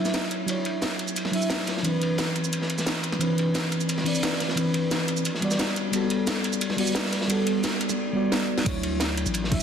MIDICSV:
0, 0, Header, 1, 4, 480
1, 0, Start_track
1, 0, Key_signature, 2, "major"
1, 0, Tempo, 340909
1, 677, Time_signature, 4, 2, 24, 8
1, 13558, End_track
2, 0, Start_track
2, 0, Title_t, "FM electric piano"
2, 0, Program_c, 0, 5
2, 0, Control_c, 0, 64, 127
2, 0, Note_on_c, 0, 54, 80
2, 0, Note_on_c, 0, 62, 75
2, 0, Note_on_c, 0, 64, 74
2, 0, Note_on_c, 0, 73, 96
2, 0, Note_on_c, 0, 76, 89
2, 634, Note_off_c, 0, 54, 0
2, 644, Note_off_c, 0, 62, 0
2, 649, Note_on_c, 0, 54, 89
2, 654, Note_off_c, 0, 64, 0
2, 662, Note_off_c, 0, 76, 0
2, 666, Note_on_c, 0, 62, 80
2, 686, Note_on_c, 0, 64, 78
2, 705, Note_off_c, 0, 73, 0
2, 705, Note_on_c, 0, 73, 95
2, 1834, Note_off_c, 0, 54, 0
2, 1843, Note_off_c, 0, 62, 0
2, 1849, Note_on_c, 0, 54, 80
2, 1853, Note_off_c, 0, 64, 0
2, 1863, Note_off_c, 0, 73, 0
2, 1869, Note_on_c, 0, 62, 73
2, 1888, Note_on_c, 0, 64, 72
2, 1907, Note_on_c, 0, 76, 90
2, 2554, Note_off_c, 0, 54, 0
2, 2565, Note_off_c, 0, 62, 0
2, 2572, Note_on_c, 0, 52, 85
2, 2574, Note_off_c, 0, 64, 0
2, 2584, Note_off_c, 0, 76, 0
2, 2590, Note_on_c, 0, 60, 78
2, 2610, Note_on_c, 0, 62, 83
2, 2616, Control_c, 0, 64, 0
2, 2628, Note_on_c, 0, 71, 98
2, 2827, Control_c, 0, 64, 127
2, 3756, Note_off_c, 0, 52, 0
2, 3765, Note_off_c, 0, 60, 0
2, 3775, Note_off_c, 0, 62, 0
2, 3784, Note_off_c, 0, 71, 0
2, 4489, Note_on_c, 0, 52, 89
2, 4508, Note_on_c, 0, 60, 80
2, 4528, Note_on_c, 0, 62, 81
2, 4545, Note_on_c, 0, 71, 97
2, 5670, Note_off_c, 0, 52, 0
2, 5684, Note_off_c, 0, 60, 0
2, 5686, Note_on_c, 0, 52, 81
2, 5694, Note_off_c, 0, 62, 0
2, 5703, Note_off_c, 0, 71, 0
2, 5706, Note_on_c, 0, 60, 75
2, 5725, Note_on_c, 0, 62, 73
2, 5744, Note_on_c, 0, 74, 87
2, 6393, Note_off_c, 0, 52, 0
2, 6403, Note_off_c, 0, 60, 0
2, 6410, Note_on_c, 0, 52, 87
2, 6412, Note_off_c, 0, 62, 0
2, 6422, Note_off_c, 0, 74, 0
2, 6429, Note_on_c, 0, 60, 83
2, 6448, Note_on_c, 0, 62, 81
2, 6465, Note_on_c, 0, 71, 97
2, 7369, Note_off_c, 0, 52, 0
2, 7379, Note_off_c, 0, 60, 0
2, 7388, Note_off_c, 0, 62, 0
2, 7397, Note_off_c, 0, 71, 0
2, 7413, Control_c, 0, 64, 0
2, 7610, Note_on_c, 0, 55, 79
2, 7629, Note_on_c, 0, 59, 73
2, 7648, Note_on_c, 0, 66, 76
2, 7666, Control_c, 0, 64, 127
2, 7667, Note_on_c, 0, 74, 91
2, 8311, Note_off_c, 0, 55, 0
2, 8325, Note_off_c, 0, 59, 0
2, 8328, Note_on_c, 0, 55, 91
2, 8334, Note_off_c, 0, 66, 0
2, 8344, Note_off_c, 0, 74, 0
2, 8348, Note_on_c, 0, 59, 81
2, 8368, Note_on_c, 0, 66, 78
2, 8386, Note_on_c, 0, 69, 97
2, 9507, Note_off_c, 0, 55, 0
2, 9524, Note_off_c, 0, 59, 0
2, 9524, Note_on_c, 0, 55, 84
2, 9534, Note_off_c, 0, 66, 0
2, 9543, Note_off_c, 0, 69, 0
2, 9545, Note_on_c, 0, 59, 77
2, 9562, Note_on_c, 0, 66, 76
2, 9581, Note_on_c, 0, 74, 88
2, 10225, Note_off_c, 0, 55, 0
2, 10242, Note_off_c, 0, 59, 0
2, 10242, Note_on_c, 0, 55, 93
2, 10251, Note_off_c, 0, 66, 0
2, 10260, Note_off_c, 0, 74, 0
2, 10261, Note_on_c, 0, 59, 80
2, 10279, Note_on_c, 0, 66, 83
2, 10299, Note_on_c, 0, 69, 95
2, 11427, Note_off_c, 0, 55, 0
2, 11440, Note_off_c, 0, 59, 0
2, 11444, Note_on_c, 0, 55, 82
2, 11450, Note_off_c, 0, 66, 0
2, 11459, Note_off_c, 0, 69, 0
2, 11463, Note_on_c, 0, 59, 77
2, 11482, Note_on_c, 0, 66, 76
2, 11502, Note_on_c, 0, 74, 92
2, 12152, Note_off_c, 0, 55, 0
2, 12161, Note_off_c, 0, 59, 0
2, 12167, Note_on_c, 0, 54, 90
2, 12171, Note_off_c, 0, 66, 0
2, 12181, Note_off_c, 0, 74, 0
2, 12186, Note_on_c, 0, 62, 82
2, 12206, Note_on_c, 0, 64, 84
2, 12215, Control_c, 0, 64, 0
2, 12224, Note_on_c, 0, 73, 100
2, 12442, Control_c, 0, 64, 127
2, 13353, Note_off_c, 0, 54, 0
2, 13363, Note_off_c, 0, 62, 0
2, 13372, Note_on_c, 0, 54, 79
2, 13373, Note_off_c, 0, 64, 0
2, 13382, Note_off_c, 0, 73, 0
2, 13390, Note_on_c, 0, 62, 75
2, 13410, Note_on_c, 0, 64, 77
2, 13427, Note_on_c, 0, 76, 94
2, 13558, Note_off_c, 0, 54, 0
2, 13558, Note_off_c, 0, 62, 0
2, 13558, Note_off_c, 0, 64, 0
2, 13558, Note_off_c, 0, 76, 0
2, 13558, End_track
3, 0, Start_track
3, 0, Title_t, "808-style bass"
3, 0, Program_c, 1, 38
3, 12196, Note_on_c, 1, 38, 100
3, 13018, Note_off_c, 1, 38, 0
3, 13038, Note_on_c, 1, 33, 78
3, 13558, Note_off_c, 1, 33, 0
3, 13558, End_track
4, 0, Start_track
4, 0, Title_t, "Drums"
4, 74, Note_on_c, 9, 40, 36
4, 74, Note_on_c, 9, 82, 55
4, 75, Note_on_c, 9, 38, 50
4, 196, Note_off_c, 9, 38, 0
4, 196, Note_off_c, 9, 82, 0
4, 196, Note_on_c, 9, 38, 120
4, 196, Note_on_c, 9, 42, 91
4, 196, Note_on_c, 9, 82, 47
4, 200, Note_on_c, 9, 51, 99
4, 202, Note_off_c, 9, 38, 0
4, 202, Note_on_c, 9, 38, 112
4, 215, Note_off_c, 9, 40, 0
4, 310, Note_off_c, 9, 38, 0
4, 310, Note_on_c, 9, 38, 37
4, 337, Note_off_c, 9, 42, 0
4, 337, Note_off_c, 9, 82, 0
4, 341, Note_off_c, 9, 51, 0
4, 437, Note_on_c, 9, 42, 70
4, 437, Note_on_c, 9, 82, 27
4, 442, Note_on_c, 9, 51, 60
4, 451, Note_off_c, 9, 38, 0
4, 578, Note_off_c, 9, 42, 0
4, 578, Note_off_c, 9, 82, 0
4, 582, Note_off_c, 9, 51, 0
4, 678, Note_on_c, 9, 42, 91
4, 678, Note_on_c, 9, 82, 50
4, 690, Note_on_c, 9, 51, 95
4, 819, Note_off_c, 9, 42, 0
4, 819, Note_off_c, 9, 82, 0
4, 831, Note_off_c, 9, 51, 0
4, 917, Note_on_c, 9, 42, 62
4, 928, Note_on_c, 9, 51, 62
4, 1058, Note_off_c, 9, 42, 0
4, 1068, Note_off_c, 9, 51, 0
4, 1153, Note_on_c, 9, 38, 113
4, 1157, Note_off_c, 9, 38, 0
4, 1157, Note_on_c, 9, 38, 122
4, 1157, Note_on_c, 9, 42, 86
4, 1157, Note_on_c, 9, 82, 46
4, 1163, Note_on_c, 9, 51, 86
4, 1272, Note_off_c, 9, 51, 0
4, 1272, Note_on_c, 9, 51, 45
4, 1298, Note_off_c, 9, 38, 0
4, 1298, Note_off_c, 9, 42, 0
4, 1298, Note_off_c, 9, 82, 0
4, 1397, Note_off_c, 9, 51, 0
4, 1397, Note_on_c, 9, 51, 70
4, 1398, Note_on_c, 9, 42, 63
4, 1398, Note_on_c, 9, 82, 26
4, 1519, Note_off_c, 9, 82, 0
4, 1519, Note_on_c, 9, 82, 56
4, 1538, Note_off_c, 9, 51, 0
4, 1539, Note_off_c, 9, 42, 0
4, 1638, Note_off_c, 9, 82, 0
4, 1638, Note_on_c, 9, 42, 95
4, 1638, Note_on_c, 9, 82, 48
4, 1652, Note_on_c, 9, 51, 82
4, 1759, Note_on_c, 9, 40, 35
4, 1765, Note_on_c, 9, 38, 37
4, 1779, Note_off_c, 9, 42, 0
4, 1779, Note_off_c, 9, 82, 0
4, 1793, Note_off_c, 9, 51, 0
4, 1878, Note_on_c, 9, 42, 64
4, 1884, Note_on_c, 9, 46, 73
4, 1900, Note_off_c, 9, 40, 0
4, 1906, Note_off_c, 9, 38, 0
4, 1999, Note_on_c, 9, 82, 56
4, 2019, Note_off_c, 9, 42, 0
4, 2025, Note_off_c, 9, 46, 0
4, 2107, Note_on_c, 9, 38, 112
4, 2110, Note_on_c, 9, 51, 89
4, 2119, Note_off_c, 9, 38, 0
4, 2119, Note_off_c, 9, 82, 0
4, 2119, Note_on_c, 9, 38, 122
4, 2119, Note_on_c, 9, 42, 89
4, 2119, Note_on_c, 9, 82, 48
4, 2241, Note_off_c, 9, 38, 0
4, 2241, Note_on_c, 9, 38, 40
4, 2251, Note_off_c, 9, 51, 0
4, 2259, Note_off_c, 9, 42, 0
4, 2259, Note_off_c, 9, 82, 0
4, 2351, Note_on_c, 9, 51, 71
4, 2359, Note_on_c, 9, 42, 65
4, 2359, Note_on_c, 9, 82, 27
4, 2368, Note_off_c, 9, 38, 0
4, 2368, Note_on_c, 9, 38, 54
4, 2491, Note_off_c, 9, 51, 0
4, 2493, Note_off_c, 9, 38, 0
4, 2493, Note_on_c, 9, 38, 46
4, 2500, Note_off_c, 9, 42, 0
4, 2500, Note_off_c, 9, 82, 0
4, 2597, Note_on_c, 9, 51, 95
4, 2598, Note_on_c, 9, 42, 93
4, 2598, Note_on_c, 9, 82, 50
4, 2634, Note_off_c, 9, 38, 0
4, 2738, Note_off_c, 9, 51, 0
4, 2739, Note_off_c, 9, 42, 0
4, 2739, Note_off_c, 9, 82, 0
4, 2838, Note_on_c, 9, 42, 63
4, 2854, Note_on_c, 9, 51, 68
4, 2978, Note_off_c, 9, 42, 0
4, 2995, Note_off_c, 9, 51, 0
4, 3069, Note_on_c, 9, 51, 85
4, 3076, Note_on_c, 9, 38, 118
4, 3079, Note_off_c, 9, 38, 0
4, 3079, Note_on_c, 9, 38, 125
4, 3079, Note_on_c, 9, 42, 90
4, 3079, Note_on_c, 9, 82, 47
4, 3210, Note_off_c, 9, 51, 0
4, 3220, Note_off_c, 9, 38, 0
4, 3220, Note_off_c, 9, 42, 0
4, 3220, Note_off_c, 9, 82, 0
4, 3313, Note_on_c, 9, 51, 70
4, 3321, Note_on_c, 9, 42, 61
4, 3321, Note_on_c, 9, 82, 27
4, 3439, Note_off_c, 9, 82, 0
4, 3439, Note_on_c, 9, 82, 58
4, 3454, Note_off_c, 9, 51, 0
4, 3461, Note_off_c, 9, 42, 0
4, 3559, Note_off_c, 9, 82, 0
4, 3559, Note_on_c, 9, 42, 89
4, 3559, Note_on_c, 9, 82, 49
4, 3563, Note_on_c, 9, 51, 82
4, 3684, Note_on_c, 9, 38, 43
4, 3700, Note_off_c, 9, 42, 0
4, 3700, Note_off_c, 9, 82, 0
4, 3704, Note_off_c, 9, 51, 0
4, 3798, Note_on_c, 9, 42, 63
4, 3798, Note_on_c, 9, 82, 27
4, 3801, Note_on_c, 9, 51, 60
4, 3825, Note_off_c, 9, 38, 0
4, 3918, Note_off_c, 9, 82, 0
4, 3918, Note_on_c, 9, 40, 35
4, 3918, Note_on_c, 9, 82, 56
4, 3921, Note_on_c, 9, 38, 46
4, 3939, Note_off_c, 9, 42, 0
4, 3941, Note_off_c, 9, 51, 0
4, 4032, Note_off_c, 9, 38, 0
4, 4032, Note_on_c, 9, 38, 120
4, 4038, Note_off_c, 9, 38, 0
4, 4038, Note_off_c, 9, 82, 0
4, 4038, Note_on_c, 9, 38, 120
4, 4038, Note_on_c, 9, 42, 90
4, 4038, Note_on_c, 9, 82, 50
4, 4050, Note_on_c, 9, 51, 90
4, 4059, Note_off_c, 9, 40, 0
4, 4159, Note_off_c, 9, 38, 0
4, 4159, Note_on_c, 9, 38, 35
4, 4179, Note_off_c, 9, 42, 0
4, 4179, Note_off_c, 9, 82, 0
4, 4191, Note_off_c, 9, 51, 0
4, 4269, Note_on_c, 9, 51, 69
4, 4278, Note_on_c, 9, 42, 65
4, 4278, Note_on_c, 9, 82, 27
4, 4299, Note_off_c, 9, 38, 0
4, 4399, Note_on_c, 9, 40, 57
4, 4409, Note_off_c, 9, 51, 0
4, 4419, Note_off_c, 9, 42, 0
4, 4419, Note_off_c, 9, 82, 0
4, 4512, Note_on_c, 9, 51, 94
4, 4520, Note_on_c, 9, 42, 92
4, 4520, Note_on_c, 9, 82, 52
4, 4540, Note_off_c, 9, 40, 0
4, 4653, Note_off_c, 9, 51, 0
4, 4661, Note_off_c, 9, 42, 0
4, 4661, Note_off_c, 9, 82, 0
4, 4759, Note_on_c, 9, 42, 63
4, 4773, Note_on_c, 9, 51, 63
4, 4900, Note_off_c, 9, 42, 0
4, 4914, Note_off_c, 9, 51, 0
4, 4993, Note_on_c, 9, 51, 80
4, 4999, Note_on_c, 9, 38, 119
4, 4999, Note_on_c, 9, 42, 86
4, 4999, Note_on_c, 9, 82, 48
4, 5000, Note_off_c, 9, 38, 0
4, 5000, Note_on_c, 9, 38, 110
4, 5127, Note_off_c, 9, 51, 0
4, 5127, Note_on_c, 9, 51, 41
4, 5139, Note_off_c, 9, 42, 0
4, 5139, Note_off_c, 9, 82, 0
4, 5141, Note_off_c, 9, 38, 0
4, 5235, Note_off_c, 9, 51, 0
4, 5235, Note_on_c, 9, 51, 67
4, 5238, Note_on_c, 9, 42, 64
4, 5238, Note_on_c, 9, 82, 28
4, 5359, Note_off_c, 9, 82, 0
4, 5359, Note_on_c, 9, 82, 60
4, 5376, Note_off_c, 9, 51, 0
4, 5379, Note_off_c, 9, 42, 0
4, 5479, Note_off_c, 9, 82, 0
4, 5479, Note_on_c, 9, 42, 93
4, 5479, Note_on_c, 9, 51, 91
4, 5479, Note_on_c, 9, 82, 53
4, 5598, Note_on_c, 9, 38, 41
4, 5600, Note_on_c, 9, 40, 33
4, 5620, Note_off_c, 9, 42, 0
4, 5620, Note_off_c, 9, 51, 0
4, 5620, Note_off_c, 9, 82, 0
4, 5710, Note_on_c, 9, 46, 82
4, 5720, Note_on_c, 9, 42, 63
4, 5738, Note_off_c, 9, 38, 0
4, 5741, Note_off_c, 9, 40, 0
4, 5842, Note_on_c, 9, 82, 59
4, 5851, Note_off_c, 9, 46, 0
4, 5861, Note_off_c, 9, 42, 0
4, 5953, Note_on_c, 9, 51, 93
4, 5958, Note_on_c, 9, 38, 121
4, 5960, Note_off_c, 9, 38, 0
4, 5960, Note_off_c, 9, 82, 0
4, 5960, Note_on_c, 9, 38, 121
4, 5960, Note_on_c, 9, 42, 92
4, 5960, Note_on_c, 9, 82, 50
4, 6082, Note_off_c, 9, 38, 0
4, 6082, Note_on_c, 9, 38, 44
4, 6094, Note_off_c, 9, 51, 0
4, 6101, Note_off_c, 9, 42, 0
4, 6101, Note_off_c, 9, 82, 0
4, 6196, Note_off_c, 9, 38, 0
4, 6196, Note_on_c, 9, 38, 49
4, 6196, Note_on_c, 9, 51, 61
4, 6201, Note_on_c, 9, 42, 64
4, 6201, Note_on_c, 9, 82, 29
4, 6311, Note_off_c, 9, 38, 0
4, 6311, Note_on_c, 9, 38, 49
4, 6337, Note_off_c, 9, 51, 0
4, 6342, Note_off_c, 9, 42, 0
4, 6342, Note_off_c, 9, 82, 0
4, 6434, Note_on_c, 9, 51, 94
4, 6440, Note_on_c, 9, 42, 97
4, 6440, Note_on_c, 9, 82, 52
4, 6451, Note_off_c, 9, 38, 0
4, 6575, Note_off_c, 9, 51, 0
4, 6581, Note_off_c, 9, 42, 0
4, 6581, Note_off_c, 9, 82, 0
4, 6673, Note_on_c, 9, 51, 76
4, 6678, Note_on_c, 9, 42, 65
4, 6814, Note_off_c, 9, 51, 0
4, 6819, Note_off_c, 9, 42, 0
4, 6918, Note_on_c, 9, 38, 110
4, 6918, Note_on_c, 9, 42, 94
4, 6918, Note_on_c, 9, 82, 51
4, 6920, Note_on_c, 9, 51, 81
4, 7059, Note_off_c, 9, 38, 0
4, 7059, Note_off_c, 9, 42, 0
4, 7059, Note_off_c, 9, 82, 0
4, 7060, Note_off_c, 9, 51, 0
4, 7155, Note_on_c, 9, 42, 64
4, 7155, Note_on_c, 9, 82, 28
4, 7160, Note_on_c, 9, 51, 68
4, 7276, Note_off_c, 9, 82, 0
4, 7276, Note_on_c, 9, 82, 62
4, 7295, Note_off_c, 9, 42, 0
4, 7300, Note_off_c, 9, 51, 0
4, 7395, Note_off_c, 9, 82, 0
4, 7395, Note_on_c, 9, 42, 93
4, 7395, Note_on_c, 9, 82, 52
4, 7407, Note_on_c, 9, 51, 90
4, 7525, Note_on_c, 9, 38, 45
4, 7536, Note_off_c, 9, 42, 0
4, 7536, Note_off_c, 9, 82, 0
4, 7548, Note_off_c, 9, 51, 0
4, 7633, Note_on_c, 9, 51, 65
4, 7635, Note_on_c, 9, 42, 65
4, 7666, Note_off_c, 9, 38, 0
4, 7756, Note_on_c, 9, 40, 35
4, 7756, Note_on_c, 9, 82, 60
4, 7760, Note_on_c, 9, 38, 57
4, 7774, Note_off_c, 9, 51, 0
4, 7776, Note_off_c, 9, 42, 0
4, 7875, Note_off_c, 9, 38, 0
4, 7875, Note_off_c, 9, 82, 0
4, 7875, Note_on_c, 9, 38, 117
4, 7875, Note_on_c, 9, 42, 92
4, 7875, Note_on_c, 9, 82, 52
4, 7876, Note_on_c, 9, 51, 93
4, 7884, Note_off_c, 9, 38, 0
4, 7884, Note_on_c, 9, 38, 106
4, 7897, Note_off_c, 9, 40, 0
4, 7994, Note_off_c, 9, 38, 0
4, 7994, Note_on_c, 9, 38, 42
4, 8016, Note_off_c, 9, 42, 0
4, 8016, Note_off_c, 9, 82, 0
4, 8017, Note_off_c, 9, 51, 0
4, 8114, Note_on_c, 9, 42, 68
4, 8114, Note_on_c, 9, 82, 29
4, 8125, Note_on_c, 9, 51, 63
4, 8134, Note_off_c, 9, 38, 0
4, 8255, Note_off_c, 9, 42, 0
4, 8255, Note_off_c, 9, 82, 0
4, 8266, Note_off_c, 9, 51, 0
4, 8352, Note_on_c, 9, 51, 82
4, 8354, Note_on_c, 9, 42, 100
4, 8354, Note_on_c, 9, 82, 56
4, 8493, Note_off_c, 9, 51, 0
4, 8495, Note_off_c, 9, 42, 0
4, 8495, Note_off_c, 9, 82, 0
4, 8592, Note_on_c, 9, 42, 71
4, 8601, Note_on_c, 9, 51, 65
4, 8733, Note_off_c, 9, 42, 0
4, 8742, Note_off_c, 9, 51, 0
4, 8831, Note_on_c, 9, 38, 113
4, 8831, Note_on_c, 9, 42, 97
4, 8831, Note_on_c, 9, 82, 52
4, 8834, Note_on_c, 9, 51, 89
4, 8837, Note_off_c, 9, 38, 0
4, 8837, Note_on_c, 9, 38, 110
4, 8950, Note_off_c, 9, 51, 0
4, 8950, Note_on_c, 9, 51, 46
4, 8972, Note_off_c, 9, 42, 0
4, 8972, Note_off_c, 9, 82, 0
4, 8978, Note_off_c, 9, 38, 0
4, 9072, Note_on_c, 9, 42, 65
4, 9072, Note_on_c, 9, 82, 28
4, 9080, Note_off_c, 9, 51, 0
4, 9080, Note_on_c, 9, 51, 70
4, 9192, Note_off_c, 9, 82, 0
4, 9192, Note_on_c, 9, 82, 62
4, 9213, Note_off_c, 9, 42, 0
4, 9220, Note_off_c, 9, 51, 0
4, 9311, Note_off_c, 9, 82, 0
4, 9311, Note_on_c, 9, 42, 101
4, 9311, Note_on_c, 9, 82, 53
4, 9313, Note_on_c, 9, 51, 92
4, 9431, Note_on_c, 9, 40, 34
4, 9436, Note_on_c, 9, 38, 38
4, 9452, Note_off_c, 9, 42, 0
4, 9452, Note_off_c, 9, 82, 0
4, 9454, Note_off_c, 9, 51, 0
4, 9549, Note_on_c, 9, 46, 77
4, 9550, Note_on_c, 9, 42, 71
4, 9572, Note_off_c, 9, 40, 0
4, 9577, Note_off_c, 9, 38, 0
4, 9672, Note_on_c, 9, 82, 64
4, 9690, Note_off_c, 9, 46, 0
4, 9691, Note_off_c, 9, 42, 0
4, 9783, Note_on_c, 9, 38, 121
4, 9793, Note_off_c, 9, 38, 0
4, 9793, Note_off_c, 9, 82, 0
4, 9793, Note_on_c, 9, 38, 115
4, 9793, Note_on_c, 9, 42, 99
4, 9793, Note_on_c, 9, 82, 53
4, 9798, Note_on_c, 9, 51, 96
4, 9930, Note_off_c, 9, 38, 0
4, 9930, Note_on_c, 9, 38, 45
4, 9934, Note_off_c, 9, 42, 0
4, 9934, Note_off_c, 9, 82, 0
4, 9939, Note_off_c, 9, 51, 0
4, 10033, Note_on_c, 9, 51, 67
4, 10035, Note_on_c, 9, 42, 71
4, 10035, Note_on_c, 9, 82, 30
4, 10040, Note_off_c, 9, 38, 0
4, 10040, Note_on_c, 9, 38, 53
4, 10152, Note_off_c, 9, 38, 0
4, 10152, Note_on_c, 9, 38, 53
4, 10173, Note_off_c, 9, 51, 0
4, 10175, Note_off_c, 9, 42, 0
4, 10175, Note_off_c, 9, 82, 0
4, 10275, Note_on_c, 9, 42, 104
4, 10275, Note_on_c, 9, 82, 55
4, 10277, Note_on_c, 9, 51, 100
4, 10293, Note_off_c, 9, 38, 0
4, 10415, Note_off_c, 9, 42, 0
4, 10415, Note_off_c, 9, 82, 0
4, 10418, Note_off_c, 9, 51, 0
4, 10515, Note_on_c, 9, 42, 73
4, 10515, Note_on_c, 9, 51, 65
4, 10655, Note_off_c, 9, 42, 0
4, 10655, Note_off_c, 9, 51, 0
4, 10754, Note_on_c, 9, 38, 117
4, 10754, Note_on_c, 9, 42, 97
4, 10754, Note_on_c, 9, 82, 52
4, 10755, Note_on_c, 9, 51, 93
4, 10768, Note_off_c, 9, 38, 0
4, 10768, Note_on_c, 9, 38, 122
4, 10895, Note_off_c, 9, 42, 0
4, 10895, Note_off_c, 9, 51, 0
4, 10895, Note_off_c, 9, 82, 0
4, 10909, Note_off_c, 9, 38, 0
4, 10994, Note_on_c, 9, 42, 69
4, 10994, Note_on_c, 9, 51, 69
4, 10994, Note_on_c, 9, 82, 29
4, 11115, Note_off_c, 9, 82, 0
4, 11115, Note_on_c, 9, 40, 34
4, 11115, Note_on_c, 9, 82, 62
4, 11135, Note_off_c, 9, 42, 0
4, 11135, Note_off_c, 9, 51, 0
4, 11256, Note_off_c, 9, 40, 0
4, 11256, Note_off_c, 9, 82, 0
4, 11714, Note_on_c, 9, 38, 112
4, 11855, Note_off_c, 9, 38, 0
4, 12075, Note_on_c, 9, 38, 84
4, 12190, Note_on_c, 9, 51, 92
4, 12197, Note_on_c, 9, 36, 120
4, 12197, Note_on_c, 9, 42, 106
4, 12197, Note_on_c, 9, 49, 108
4, 12197, Note_on_c, 9, 82, 52
4, 12216, Note_off_c, 9, 38, 0
4, 12331, Note_off_c, 9, 51, 0
4, 12338, Note_off_c, 9, 36, 0
4, 12338, Note_off_c, 9, 42, 0
4, 12338, Note_off_c, 9, 49, 0
4, 12338, Note_off_c, 9, 82, 0
4, 12438, Note_on_c, 9, 51, 71
4, 12439, Note_on_c, 9, 42, 71
4, 12579, Note_off_c, 9, 42, 0
4, 12579, Note_off_c, 9, 51, 0
4, 12671, Note_on_c, 9, 38, 111
4, 12676, Note_on_c, 9, 51, 84
4, 12679, Note_off_c, 9, 38, 0
4, 12679, Note_on_c, 9, 38, 119
4, 12679, Note_on_c, 9, 42, 98
4, 12679, Note_on_c, 9, 82, 51
4, 12793, Note_off_c, 9, 51, 0
4, 12793, Note_on_c, 9, 51, 45
4, 12820, Note_off_c, 9, 38, 0
4, 12820, Note_off_c, 9, 42, 0
4, 12820, Note_off_c, 9, 82, 0
4, 12918, Note_on_c, 9, 42, 68
4, 12918, Note_on_c, 9, 82, 28
4, 12919, Note_off_c, 9, 51, 0
4, 12919, Note_on_c, 9, 51, 66
4, 13039, Note_off_c, 9, 82, 0
4, 13039, Note_on_c, 9, 82, 61
4, 13059, Note_off_c, 9, 42, 0
4, 13059, Note_off_c, 9, 51, 0
4, 13149, Note_on_c, 9, 51, 83
4, 13161, Note_off_c, 9, 82, 0
4, 13161, Note_on_c, 9, 42, 99
4, 13161, Note_on_c, 9, 82, 51
4, 13290, Note_off_c, 9, 51, 0
4, 13293, Note_on_c, 9, 38, 42
4, 13302, Note_off_c, 9, 42, 0
4, 13302, Note_off_c, 9, 82, 0
4, 13399, Note_on_c, 9, 36, 109
4, 13400, Note_on_c, 9, 42, 70
4, 13409, Note_on_c, 9, 46, 84
4, 13434, Note_off_c, 9, 38, 0
4, 13540, Note_off_c, 9, 36, 0
4, 13541, Note_off_c, 9, 42, 0
4, 13550, Note_off_c, 9, 46, 0
4, 13558, End_track
0, 0, End_of_file